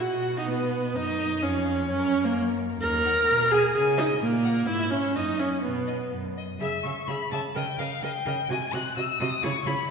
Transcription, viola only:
0, 0, Header, 1, 2, 480
1, 0, Start_track
1, 0, Tempo, 466563
1, 9, Time_signature, 2, 2, 24, 8
1, 4809, Tempo, 481155
1, 7209, Tempo, 469116
1, 10099, End_track
2, 0, Start_track
2, 0, Title_t, "Viola"
2, 0, Program_c, 0, 41
2, 5, Note_on_c, 0, 66, 74
2, 387, Note_on_c, 0, 63, 66
2, 403, Note_off_c, 0, 66, 0
2, 500, Note_on_c, 0, 59, 67
2, 515, Note_off_c, 0, 63, 0
2, 987, Note_on_c, 0, 63, 80
2, 1002, Note_off_c, 0, 59, 0
2, 1469, Note_on_c, 0, 61, 68
2, 1484, Note_off_c, 0, 63, 0
2, 1936, Note_off_c, 0, 61, 0
2, 1942, Note_on_c, 0, 61, 88
2, 2311, Note_on_c, 0, 58, 76
2, 2327, Note_off_c, 0, 61, 0
2, 2427, Note_off_c, 0, 58, 0
2, 2898, Note_on_c, 0, 70, 111
2, 3616, Note_on_c, 0, 68, 100
2, 3632, Note_off_c, 0, 70, 0
2, 3843, Note_off_c, 0, 68, 0
2, 3849, Note_on_c, 0, 68, 97
2, 3931, Note_off_c, 0, 68, 0
2, 4095, Note_on_c, 0, 63, 84
2, 4178, Note_off_c, 0, 63, 0
2, 4334, Note_on_c, 0, 58, 77
2, 4806, Note_on_c, 0, 64, 86
2, 4821, Note_off_c, 0, 58, 0
2, 5045, Note_on_c, 0, 61, 73
2, 5060, Note_off_c, 0, 64, 0
2, 5290, Note_on_c, 0, 63, 78
2, 5305, Note_off_c, 0, 61, 0
2, 5525, Note_on_c, 0, 61, 69
2, 5540, Note_off_c, 0, 63, 0
2, 5763, Note_off_c, 0, 61, 0
2, 5769, Note_on_c, 0, 59, 61
2, 6244, Note_off_c, 0, 59, 0
2, 6739, Note_on_c, 0, 68, 66
2, 6818, Note_off_c, 0, 68, 0
2, 6984, Note_on_c, 0, 68, 54
2, 7064, Note_off_c, 0, 68, 0
2, 7222, Note_on_c, 0, 68, 56
2, 7304, Note_off_c, 0, 68, 0
2, 7465, Note_on_c, 0, 68, 57
2, 7546, Note_off_c, 0, 68, 0
2, 7697, Note_on_c, 0, 70, 63
2, 7779, Note_off_c, 0, 70, 0
2, 7940, Note_on_c, 0, 70, 57
2, 8022, Note_off_c, 0, 70, 0
2, 8184, Note_on_c, 0, 70, 62
2, 8266, Note_off_c, 0, 70, 0
2, 8415, Note_on_c, 0, 70, 60
2, 8497, Note_off_c, 0, 70, 0
2, 8659, Note_on_c, 0, 66, 72
2, 8741, Note_off_c, 0, 66, 0
2, 8905, Note_on_c, 0, 66, 56
2, 8987, Note_off_c, 0, 66, 0
2, 9141, Note_on_c, 0, 66, 65
2, 9223, Note_off_c, 0, 66, 0
2, 9384, Note_on_c, 0, 66, 64
2, 9466, Note_off_c, 0, 66, 0
2, 9615, Note_on_c, 0, 64, 69
2, 9697, Note_off_c, 0, 64, 0
2, 9853, Note_on_c, 0, 64, 60
2, 9935, Note_off_c, 0, 64, 0
2, 10099, End_track
0, 0, End_of_file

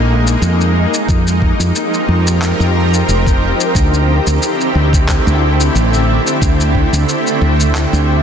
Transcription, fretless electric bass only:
0, 0, Header, 1, 2, 480
1, 0, Start_track
1, 0, Tempo, 666667
1, 780, Time_signature, 4, 2, 24, 8
1, 5923, End_track
2, 0, Start_track
2, 0, Title_t, "Fretless electric bass"
2, 0, Program_c, 0, 35
2, 0, Note_on_c, 0, 34, 79
2, 251, Note_off_c, 0, 34, 0
2, 300, Note_on_c, 0, 41, 88
2, 611, Note_off_c, 0, 41, 0
2, 781, Note_on_c, 0, 41, 85
2, 1092, Note_off_c, 0, 41, 0
2, 1148, Note_on_c, 0, 41, 75
2, 1228, Note_off_c, 0, 41, 0
2, 1501, Note_on_c, 0, 41, 71
2, 1812, Note_off_c, 0, 41, 0
2, 1871, Note_on_c, 0, 41, 84
2, 2171, Note_off_c, 0, 41, 0
2, 2221, Note_on_c, 0, 29, 77
2, 2532, Note_off_c, 0, 29, 0
2, 2701, Note_on_c, 0, 38, 87
2, 3011, Note_off_c, 0, 38, 0
2, 3072, Note_on_c, 0, 38, 78
2, 3150, Note_off_c, 0, 38, 0
2, 3421, Note_on_c, 0, 38, 67
2, 3732, Note_off_c, 0, 38, 0
2, 3792, Note_on_c, 0, 38, 90
2, 4091, Note_off_c, 0, 38, 0
2, 4141, Note_on_c, 0, 33, 89
2, 4452, Note_off_c, 0, 33, 0
2, 4620, Note_on_c, 0, 38, 84
2, 4931, Note_off_c, 0, 38, 0
2, 4987, Note_on_c, 0, 38, 75
2, 5068, Note_off_c, 0, 38, 0
2, 5338, Note_on_c, 0, 38, 76
2, 5650, Note_off_c, 0, 38, 0
2, 5709, Note_on_c, 0, 38, 84
2, 5923, Note_off_c, 0, 38, 0
2, 5923, End_track
0, 0, End_of_file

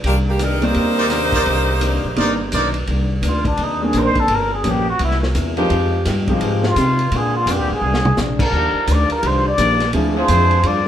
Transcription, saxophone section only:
0, 0, Header, 1, 2, 480
1, 0, Start_track
1, 0, Key_signature, -3, "minor"
1, 0, Tempo, 353149
1, 52, Time_signature, 4, 2, 24, 8
1, 14787, End_track
2, 0, Start_track
2, 0, Title_t, "Saxophone section"
2, 0, Program_c, 0, 65
2, 80, Note_on_c, 0, 51, 76
2, 80, Note_on_c, 0, 58, 82
2, 84, Note_on_c, 0, 67, 96
2, 88, Note_on_c, 0, 62, 81
2, 210, Note_off_c, 0, 58, 0
2, 211, Note_off_c, 0, 51, 0
2, 214, Note_off_c, 0, 67, 0
2, 217, Note_off_c, 0, 62, 0
2, 384, Note_on_c, 0, 51, 73
2, 385, Note_on_c, 0, 67, 89
2, 387, Note_on_c, 0, 58, 75
2, 389, Note_on_c, 0, 62, 72
2, 536, Note_off_c, 0, 51, 0
2, 537, Note_off_c, 0, 67, 0
2, 538, Note_off_c, 0, 58, 0
2, 539, Note_off_c, 0, 62, 0
2, 567, Note_on_c, 0, 55, 84
2, 568, Note_on_c, 0, 63, 82
2, 569, Note_on_c, 0, 62, 81
2, 570, Note_on_c, 0, 70, 98
2, 854, Note_off_c, 0, 55, 0
2, 855, Note_off_c, 0, 62, 0
2, 855, Note_off_c, 0, 63, 0
2, 856, Note_off_c, 0, 70, 0
2, 869, Note_on_c, 0, 72, 115
2, 870, Note_on_c, 0, 67, 105
2, 871, Note_on_c, 0, 58, 104
2, 873, Note_on_c, 0, 63, 98
2, 3440, Note_off_c, 0, 67, 0
2, 3440, Note_off_c, 0, 72, 0
2, 3441, Note_off_c, 0, 58, 0
2, 3442, Note_off_c, 0, 63, 0
2, 14787, End_track
0, 0, End_of_file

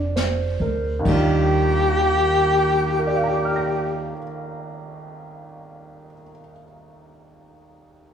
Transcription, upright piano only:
0, 0, Header, 1, 2, 480
1, 0, Start_track
1, 0, Key_signature, -3, "major"
1, 0, Tempo, 1382488
1, 530, Tempo, 1442308
1, 531, Time_signature, 4, 2, 24, 8
1, 2730, End_track
2, 0, Start_track
2, 0, Title_t, "Upright piano"
2, 0, Program_c, 0, 0
2, 0, Control_c, 0, 64, 127
2, 0, Note_on_c, 0, 56, 40
2, 0, Note_on_c, 0, 60, 32
2, 0, Note_on_c, 0, 62, 36
2, 0, Note_on_c, 0, 65, 43
2, 0, Note_on_c, 0, 74, 37
2, 55, Note_on_c, 0, 72, 34
2, 141, Note_off_c, 0, 74, 0
2, 213, Note_on_c, 0, 70, 37
2, 345, Note_on_c, 0, 39, 46
2, 350, Note_off_c, 0, 72, 0
2, 354, Note_off_c, 0, 70, 0
2, 354, Note_on_c, 0, 51, 44
2, 361, Note_off_c, 0, 56, 0
2, 362, Note_off_c, 0, 60, 0
2, 364, Control_c, 0, 64, 0
2, 365, Note_on_c, 0, 55, 42
2, 367, Note_off_c, 0, 62, 0
2, 368, Note_off_c, 0, 65, 0
2, 375, Note_on_c, 0, 62, 43
2, 387, Note_on_c, 0, 65, 55
2, 423, Control_c, 0, 64, 127
2, 535, Control_c, 0, 64, 0
2, 586, Control_c, 0, 64, 127
2, 1016, Note_on_c, 0, 70, 33
2, 1043, Note_on_c, 0, 74, 31
2, 1069, Note_on_c, 0, 77, 29
2, 1099, Note_on_c, 0, 82, 28
2, 1131, Note_on_c, 0, 86, 28
2, 1170, Note_on_c, 0, 89, 26
2, 1207, Note_on_c, 0, 94, 27
2, 1388, Note_off_c, 0, 39, 0
2, 1396, Note_off_c, 0, 51, 0
2, 1406, Note_off_c, 0, 55, 0
2, 1416, Note_off_c, 0, 62, 0
2, 1428, Note_off_c, 0, 65, 0
2, 2038, Note_off_c, 0, 70, 0
2, 2065, Note_off_c, 0, 74, 0
2, 2091, Note_off_c, 0, 77, 0
2, 2120, Note_off_c, 0, 82, 0
2, 2153, Note_off_c, 0, 86, 0
2, 2191, Note_off_c, 0, 89, 0
2, 2228, Note_off_c, 0, 94, 0
2, 2730, End_track
0, 0, End_of_file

